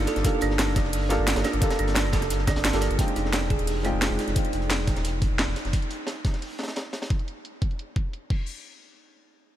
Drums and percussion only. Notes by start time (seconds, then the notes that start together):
0.06 snare, closed hi-hat
0.16 snare, closed hi-hat
0.25 kick, closed hi-hat
0.41 closed hi-hat
0.51 snare
0.59 snare, closed hi-hat
0.75 kick, snare, closed hi-hat
0.84 snare
0.93 closed hi-hat, open hi-hat
1.10 snare, closed hi-hat
1.27 snare, closed hi-hat
1.36 snare, closed hi-hat
1.44 snare, closed hi-hat
1.53 closed hi-hat
1.61 kick, snare, closed hi-hat
1.71 snare, closed hi-hat
1.79 closed hi-hat
1.88 snare, closed hi-hat
1.95 snare, closed hi-hat
1.96 snare, closed hi-hat
2.05 cross-stick, snare
2.13 kick, snare, closed hi-hat
2.21 cross-stick, snare, closed hi-hat
2.30 closed hi-hat
2.39 snare
2.47 kick, snare, closed hi-hat
2.56 snare, closed hi-hat
2.65 snare, closed hi-hat
2.73 snare, closed hi-hat
2.81 closed hi-hat
2.91 closed hi-hat
2.99 kick, closed hi-hat
3.08 closed hi-hat
3.16 closed hi-hat
3.25 snare
3.33 snare, closed hi-hat
3.50 kick, closed hi-hat
3.59 closed hi-hat
3.67 closed hi-hat, open hi-hat
3.84 closed hi-hat
4.02 snare, closed hi-hat
4.19 closed hi-hat
4.28 snare, closed hi-hat
4.36 kick, closed hi-hat
4.45 closed hi-hat
4.53 closed hi-hat
4.62 closed hi-hat
4.70 snare, closed hi-hat
4.79 snare
4.87 kick, snare, closed hi-hat
4.96 snare, closed hi-hat
5.04 closed hi-hat
5.22 kick, closed hi-hat
5.39 snare, closed hi-hat
5.56 snare, closed hi-hat
5.65 snare, closed hi-hat
5.73 kick, closed hi-hat
5.82 closed hi-hat
5.90 closed hi-hat
6.07 snare, closed hi-hat
6.25 kick, snare, closed hi-hat
6.33 snare, closed hi-hat
6.42 closed hi-hat, open hi-hat
6.58 snare, closed hi-hat
6.63 snare, closed hi-hat
6.68 snare, closed hi-hat
6.76 snare, closed hi-hat
6.93 snare, closed hi-hat
7.02 snare, closed hi-hat
7.10 kick, closed hi-hat
7.19 closed hi-hat
7.28 closed hi-hat
7.45 closed hi-hat
7.62 kick, closed hi-hat
7.71 closed hi-hat
7.79 closed hi-hat
7.96 kick, closed hi-hat
8.13 closed hi-hat
8.30 kick, crash